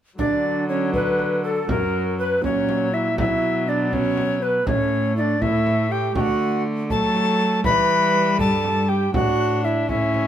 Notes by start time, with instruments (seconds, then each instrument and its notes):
0.18 cello D3, viola F#3, recorder D4 D5, frame drum
0.69 recorder C#4 C#5
0.93 recorder B4, frame drum
1.19 frame drum
1.44 recorder A4
1.69 cello F#2, viola F#3, recorder A#4, frame drum
2.19 recorder B4
2.42 cello A#2, viola F#3, recorder C#4 C#5, frame drum
2.69 frame drum
2.93 recorder E4 E5
3.18 cello B2, viola F#3, recorder E4 E5, frame drum
3.68 recorder D4 D5
3.91 recorder C#4 C#5, frame drum
4.18 frame drum
4.41 recorder B4
4.67 cello A2, viola A3, recorder C#4 C#5, frame drum
5.16 recorder E4 D5
5.21 recorder D4
5.41 cello A2, viola A3, recorder E4 E5, frame drum
5.67 frame drum
5.90 recorder G4 G5
6.15 cello D3, viola A3, recorder F#4 G5, frame drum
6.21 recorder F#5
6.90 cello F#3, viola A3, recorder A4 A5, frame drum
7.15 frame drum
7.64 cello E3, viola G3, recorder B4 B5, frame drum
8.39 cello G2, recorder A4 A5, frame drum
8.64 frame drum
8.89 recorder G4 G5
9.14 cello A2, viola D4, recorder F#4 F#5, frame drum
9.64 recorder E4 E5
9.89 cello A2, viola C#4, recorder E4 E5, frame drum
10.14 frame drum